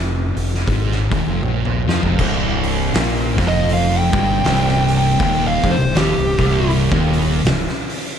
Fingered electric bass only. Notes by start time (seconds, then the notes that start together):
Already playing: F1
0.37 F1
0.67 G#1
1.12 D#1
1.27 F1
1.43 A#1
1.87 F2
2.04 F1
2.19 C1
2.96 A#1
3.38 F1
4.14 G1
4.45 C1
5.20 D#1
5.64 F1
5.80 C1
5.95 D#1
6.18 C1
6.39 C1
6.92 D#1
7.45 C1